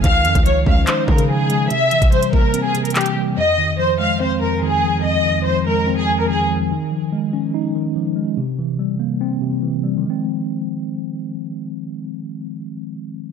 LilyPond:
<<
  \new Staff \with { instrumentName = "Violin section" } { \time 4/4 \key f \minor \tempo 4 = 144 f''4 des''8 f''8 c''8 bes'8 aes'4 | e''4 c''8 bes'8. aes'8 bes'16 g'8 r8 | ees''4 c''8 f''8 c''8 bes'8 aes'4 | ees''4 c''8 bes'8. aes'8 bes'16 aes'8 r8 |
r1 | r1 | r1 | r1 | }
  \new Staff \with { instrumentName = "Tine electric piano" } { \clef bass \time 4/4 \key f \minor ees8 f8 aes8 des'8 ees'8 ees8 f8 aes8 | c8 e8 g8 bes8 c'8 c8 e8 g8 | f,8 ees8 f8 aes8 c'8 f,8 ees8 f8 | f,8 ees8 f8 aes8 c'8 f,8 ees8 f8 |
ees8 f8 aes8 des'8 ees'8 ees8 f8 aes8 | c8 e8 g8 bes8 c'8 c8 e8 g8 | <ees f aes c'>1~ | <ees f aes c'>1 | }
  \new Staff \with { instrumentName = "808-style bass" } { \clef bass \time 4/4 \key f \minor des,8 f,16 des,8. des,8 r8 des4. | r1 | r1 | r1 |
r1 | r1 | r1 | r1 | }
  \new DrumStaff \with { instrumentName = "Drums" } \drummode { \time 4/4 <hh bd>8 hh16 <hh bd>16 hh8 bd8 <hc hh>8 bd16 hh16 r8 hh8 | hh8 hh16 <hh bd>16 hh16 hh16 bd8 hh8 hh16 hh32 hh32 <hc hh>32 hh32 hh8. | r4 r4 r4 r4 | r4 r4 r4 r4 |
r4 r4 r4 r4 | r4 r4 r4 r4 | r4 r4 r4 r4 | r4 r4 r4 r4 | }
>>